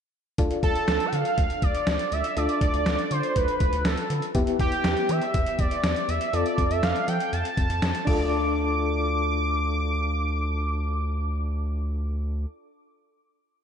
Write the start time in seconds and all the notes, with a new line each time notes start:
0.38 D2 D4 F4 A4, kick, closed hi-hat
0.51 closed hi-hat
0.63 D2 A4, kick, closed hi-hat
0.75 closed hi-hat
0.88 D2, snare, closed hi-hat
1.00 closed hi-hat
1.06 G5
1.13 D3 F5, closed hi-hat
1.25 closed hi-hat
1.38 D2, kick, closed hi-hat
1.50 closed hi-hat
1.62 D2 D5, kick, closed hi-hat
1.75 closed hi-hat
1.87 D2, snare, closed hi-hat
1.99 closed hi-hat
2.12 D2 E5, closed hi-hat
2.24 closed hi-hat
2.36 D2 D4 F4 A4 D5, closed hi-hat
2.49 closed hi-hat
2.61 D2 D5, kick, closed hi-hat
2.74 D2, closed hi-hat
2.86 D2, snare, closed hi-hat
2.99 closed hi-hat
3.11 D3 C5, closed hi-hat
3.23 closed hi-hat
3.36 D2 B4, kick, closed hi-hat
3.48 closed hi-hat
3.60 D2, kick, closed hi-hat
3.73 D2, closed hi-hat
3.85 D2 A4, snare, closed hi-hat
3.98 closed hi-hat
4.10 D3, closed hi-hat
4.22 closed hi-hat
4.35 E2 B3 E4 G4, kick, closed hi-hat
4.47 closed hi-hat
4.59 E2 G4, kick, closed hi-hat
4.72 closed hi-hat
4.84 E2, snare, closed hi-hat
4.97 closed hi-hat
5.09 E3 E5, closed hi-hat
5.22 closed hi-hat
5.34 E2, kick, closed hi-hat
5.46 closed hi-hat
5.59 E2 D5, kick, closed hi-hat
5.71 closed hi-hat
5.84 E2, snare, closed hi-hat
5.96 closed hi-hat
6.08 E2 E5, closed hi-hat
6.21 closed hi-hat
6.33 F2 C4 F4 A4 D5, closed hi-hat
6.46 closed hi-hat
6.58 F2, kick, closed hi-hat
6.71 F2 E5, closed hi-hat
6.83 F2 F5, snare, closed hi-hat
6.96 closed hi-hat
7.08 F3 G5, closed hi-hat
7.20 closed hi-hat
7.33 F2 A5, closed hi-hat
7.45 closed hi-hat
7.57 F2, kick, closed hi-hat
7.70 F2, closed hi-hat
7.82 F2, snare, closed hi-hat
7.95 closed hi-hat
8.05 D2 D4 F4 D6, kick, crash
8.09 A4